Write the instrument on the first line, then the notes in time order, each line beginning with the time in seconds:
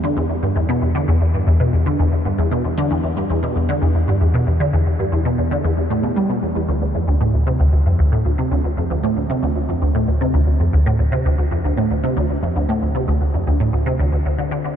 synth arpeggio sound
0.04 D3
0.17 E2
0.30 E2
0.43 G2
0.56 E2
0.69 B2
0.82 E2
0.95 D3
1.08 E2
1.21 E2
1.34 G2
1.47 E2
1.60 B2
1.73 E2
1.86 D3
1.99 E2
2.12 E2
2.25 G2
2.38 E2
2.51 B2
2.64 E2
2.78 D3
2.91 E2
3.04 E2
3.17 G2
3.30 E2
3.43 B2
3.56 E2
3.69 D3
3.82 E2
3.95 E2
4.08 G2
4.21 E2
4.34 B2
4.47 E2
4.60 D3
4.73 E2
4.86 E2
4.99 G2
5.12 E2
5.25 B2
5.38 E2
5.51 D3
5.64 E2
5.77 E2
5.90 A2
6.03 B2
6.16 G3
6.29 B2
6.42 E2
6.55 E2
6.68 D2
6.82 D2
6.95 F2
7.08 D2
7.21 A2
7.34 D2
7.47 C3
7.60 D2
7.73 D2
7.86 F2
7.99 D2
8.12 A2
8.25 D2
8.38 C3
8.51 D2
8.64 D2
8.77 F2
8.90 D2
9.03 A2
9.16 D2
9.30 C3
9.43 D2
9.56 D2
9.69 F2
9.82 D2
9.95 A2
10.08 D2
10.21 C3
10.34 D2
10.47 D2
10.60 F2
10.73 D2
10.86 A2
10.99 D2
11.12 C3
11.25 D2
11.38 D2
11.51 F2
11.64 D2
11.77 A2
11.91 D2
12.04 C3
12.17 D2
12.30 D2
12.43 F2
12.56 D2
12.69 A2
12.82 D2
12.95 C3
13.08 D2
13.21 D2
13.34 F2
13.47 D2
13.60 A2
13.73 D2
13.86 C3
13.99 D2
14.12 D2
14.25 D2
14.38 D3
14.51 D3
14.65 D3